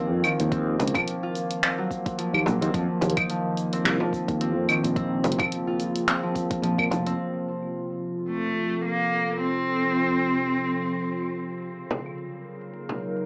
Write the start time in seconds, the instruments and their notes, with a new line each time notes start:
Already playing: fretless electric bass D#2, ambient pad D#3 A#3 C4 F4 A#4, harp F3 C4 D#4
0.12 fretless electric bass F2
0.24 harp D#3, cabasa, claves
0.40 fretless electric bass D#2, closed hi-hat, cabasa
0.52 harp C4, kick, closed hi-hat, cabasa
0.79 fretless electric bass C#2, closed hi-hat, frame drum, cabasa
0.88 closed hi-hat
0.94 harp F3, kick, closed hi-hat, frame drum, cabasa, claves
1.08 closed hi-hat, cabasa
1.23 harp F4
1.35 closed hi-hat, cabasa
1.51 closed hi-hat, cabasa
1.63 harp C4, finger snap, closed hi-hat, cabasa
1.78 harp F#3
1.91 kick, cabasa
2.06 kick, closed hi-hat, cabasa
2.18 harp F3, closed hi-hat, cabasa
2.34 fretless electric bass D#2, claves
2.46 fretless electric bass A#1, harp F#3, frame drum, cabasa
2.61 fretless electric bass D#2, harp C4, closed hi-hat, cabasa
2.74 fretless electric bass F2, harp F3, kick, closed hi-hat, cabasa
3.01 fretless electric bass D#2, closed hi-hat, frame drum, cabasa
3.10 closed hi-hat
3.17 harp D#4, kick, closed hi-hat, cabasa, claves
3.30 harp F3, closed hi-hat, cabasa
3.51 ambient pad F4
3.57 closed hi-hat, cabasa
3.71 ambient pad C4, harp C4, closed hi-hat, cabasa
3.85 fretless electric bass C2, finger snap, closed hi-hat, cabasa
4.00 harp F3, frame drum
4.13 kick, cabasa
4.28 fretless electric bass D#2, kick, closed hi-hat, cabasa
4.41 harp C4, closed hi-hat, cabasa
4.56 fretless electric bass F2
4.69 harp D#3, cabasa, claves
4.84 fretless electric bass A#1, closed hi-hat, cabasa
4.96 ambient pad C#3, harp C4, kick, closed hi-hat, cabasa
5.24 fretless electric bass F1, closed hi-hat, frame drum, cabasa
5.32 closed hi-hat
5.38 harp F3, kick, closed hi-hat, frame drum, cabasa, claves
5.52 closed hi-hat, cabasa
5.67 harp F4
5.80 closed hi-hat, cabasa
5.96 closed hi-hat, cabasa
6.08 harp C4, finger snap, closed hi-hat, cabasa
6.23 harp F3
6.35 kick, closed hi-hat, cabasa
6.51 kick, closed hi-hat, cabasa
6.62 fretless electric bass A#1, harp F3, closed hi-hat, cabasa
6.78 fretless electric bass A#2, kick, claves
6.90 fretless electric bass F1, harp F3, closed hi-hat, frame drum, cabasa
7.06 harp C4, closed hi-hat, cabasa
7.19 ambient pad C3
7.47 closed hi-hat
7.54 closed hi-hat
7.62 ambient pad F3, claves
7.75 closed hi-hat
8.07 ambient pad A4
8.18 closed hi-hat
8.30 cello A3, closed hi-hat
8.74 closed hi-hat
8.85 cello A#3, closed hi-hat
9.14 claves
9.41 cello C4
9.76 closed hi-hat
9.84 claves
9.96 closed hi-hat
10.52 closed hi-hat
10.95 closed hi-hat
11.07 closed hi-hat
11.23 claves
11.35 closed hi-hat
11.50 closed hi-hat
11.63 ambient pad C#3, closed hi-hat
11.90 closed hi-hat, frame drum
11.98 closed hi-hat
12.06 closed hi-hat, claves
12.13 ambient pad F#3
12.18 closed hi-hat
12.36 ambient pad A#4
12.56 ambient pad A#3
12.61 ambient pad D#4, closed hi-hat
12.74 closed hi-hat
12.89 frame drum
13.17 closed hi-hat